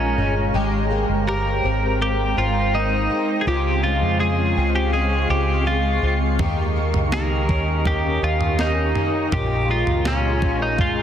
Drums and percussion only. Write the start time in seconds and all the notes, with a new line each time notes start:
6.39 kick, floor tom
6.94 floor tom
7.12 snare
7.49 kick
7.85 kick, floor tom
8.41 floor tom
8.59 snare
8.95 floor tom
9.32 kick, floor tom
9.87 floor tom
10.05 snare
10.42 kick
10.78 kick, floor tom